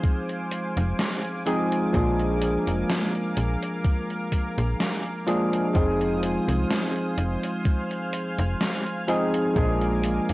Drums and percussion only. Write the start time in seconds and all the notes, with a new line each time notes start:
0.04 kick, closed hi-hat
0.29 closed hi-hat
0.52 closed hi-hat
0.77 closed hi-hat
0.99 snare, closed hi-hat
1.25 closed hi-hat
1.47 closed hi-hat
1.72 closed hi-hat
1.94 kick, closed hi-hat
2.20 closed hi-hat
2.42 closed hi-hat
2.67 closed hi-hat
2.89 snare, closed hi-hat
3.15 closed hi-hat
3.37 closed hi-hat
3.63 closed hi-hat
3.85 kick, closed hi-hat
4.10 closed hi-hat
4.32 kick, closed hi-hat
4.58 closed hi-hat
4.80 snare, closed hi-hat
5.06 closed hi-hat
5.28 closed hi-hat
5.53 closed hi-hat
5.75 kick, closed hi-hat
6.01 closed hi-hat
6.23 closed hi-hat
6.48 closed hi-hat
6.70 snare, closed hi-hat
6.96 closed hi-hat
7.18 closed hi-hat
7.43 closed hi-hat
7.65 kick, closed hi-hat
7.91 closed hi-hat
8.13 closed hi-hat
8.39 closed hi-hat
8.61 snare, closed hi-hat
8.86 closed hi-hat
9.08 closed hi-hat
9.34 closed hi-hat
9.56 kick, closed hi-hat
9.81 closed hi-hat
10.03 closed hi-hat
10.29 closed hi-hat